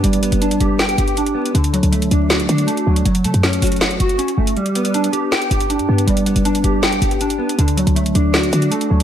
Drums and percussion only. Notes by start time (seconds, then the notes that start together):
0.04 closed hi-hat
0.13 closed hi-hat
0.23 closed hi-hat
0.32 closed hi-hat
0.42 closed hi-hat
0.51 closed hi-hat
0.60 closed hi-hat
0.79 snare, closed hi-hat
0.89 closed hi-hat
0.98 closed hi-hat
1.08 closed hi-hat
1.17 closed hi-hat
1.27 closed hi-hat
1.46 closed hi-hat
1.55 closed hi-hat
1.64 closed hi-hat
1.74 closed hi-hat
1.83 closed hi-hat
1.93 closed hi-hat
2.02 closed hi-hat
2.11 closed hi-hat
2.30 snare, closed hi-hat
2.40 closed hi-hat
2.49 closed hi-hat
2.58 closed hi-hat
2.68 closed hi-hat
2.77 closed hi-hat
2.96 closed hi-hat
3.06 closed hi-hat
3.15 closed hi-hat
3.24 closed hi-hat
3.34 closed hi-hat
3.43 snare, closed hi-hat
3.53 closed hi-hat
3.62 closed hi-hat, open hi-hat
3.67 closed hi-hat
3.72 closed hi-hat
3.76 closed hi-hat
3.81 snare, closed hi-hat
3.91 closed hi-hat
4.00 closed hi-hat
4.09 closed hi-hat
4.19 closed hi-hat
4.28 closed hi-hat
4.47 closed hi-hat
4.57 closed hi-hat
4.66 closed hi-hat
4.75 closed hi-hat
4.85 closed hi-hat
4.94 closed hi-hat
5.04 closed hi-hat
5.13 closed hi-hat
5.32 snare, closed hi-hat
5.42 closed hi-hat
5.51 closed hi-hat
5.60 closed hi-hat
5.70 closed hi-hat
5.79 closed hi-hat
5.98 closed hi-hat
6.08 closed hi-hat
6.17 closed hi-hat
6.26 closed hi-hat
6.36 closed hi-hat
6.45 closed hi-hat
6.55 closed hi-hat
6.64 closed hi-hat
6.83 snare, closed hi-hat
6.92 closed hi-hat
7.02 closed hi-hat
7.11 closed hi-hat
7.21 closed hi-hat
7.30 closed hi-hat
7.49 closed hi-hat
7.59 closed hi-hat
7.68 closed hi-hat
7.77 closed hi-hat
7.87 closed hi-hat
7.96 closed hi-hat
8.06 closed hi-hat
8.15 closed hi-hat
8.34 snare, closed hi-hat
8.44 closed hi-hat
8.53 closed hi-hat
8.62 closed hi-hat
8.72 closed hi-hat
8.81 closed hi-hat